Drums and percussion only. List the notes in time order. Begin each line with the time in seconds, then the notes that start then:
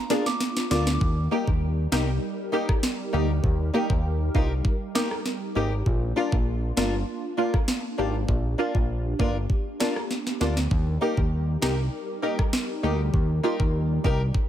0.10 snare, closed hi-hat
0.26 snare
0.40 snare, closed hi-hat
0.56 snare, closed hi-hat
0.71 snare, closed hi-hat
0.87 snare
1.01 kick
1.47 kick
1.92 snare
2.69 kick, cross-stick
2.83 snare
3.44 kick
3.90 kick
4.35 kick
4.65 kick
4.95 snare
5.11 cross-stick
5.26 snare
5.86 kick
6.32 kick
6.77 snare
7.54 kick, cross-stick
7.68 snare
8.29 kick
8.75 kick
9.20 kick
9.50 kick
9.80 snare
9.96 cross-stick
10.11 snare
10.27 snare
10.41 snare
10.57 snare
10.71 kick
11.17 kick
11.62 snare
12.39 kick, cross-stick
12.53 snare
13.14 kick
13.60 kick
14.05 kick
14.35 kick